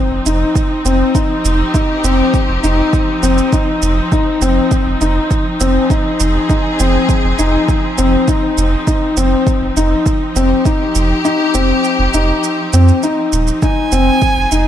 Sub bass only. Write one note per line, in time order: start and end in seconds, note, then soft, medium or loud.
0.11 0.20 F1 medium
0.26 0.44 F1 medium
0.85 1.03 F1 medium
1.45 1.63 F1 loud
2.04 2.22 F1 medium
2.49 2.58 F1 medium
2.64 2.82 F1 medium
3.23 3.41 F1 medium
3.82 4.00 F1 medium
4.41 4.60 F1 loud
4.86 4.95 F1 medium
5.01 5.19 F1 medium
5.61 5.79 F1 medium
6.20 6.38 F1 medium
6.80 6.98 F1 loud
7.24 7.33 F1 medium
7.39 7.57 F1 medium
7.98 8.16 F1 medium
8.58 8.76 F1 medium
9.17 9.35 F1 loud
9.61 9.70 F1 medium
9.76 9.94 F1 medium
10.36 10.54 F1 loud
10.95 11.13 F1 medium
11.55 11.73 F1 loud
11.99 12.08 F1 medium
12.14 12.32 F1 medium
12.73 12.91 F2 loud
13.33 13.51 D#1 loud
13.92 14.10 F1 loud
14.37 14.46 F1 medium
14.52 14.68 F1 medium